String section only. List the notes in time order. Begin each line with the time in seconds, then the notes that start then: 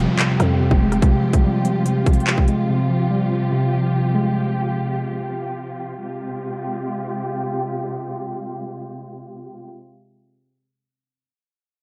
Already playing: C3 F3 F4 G4
2.69 G4
6.02 C3 G#3 F4 G4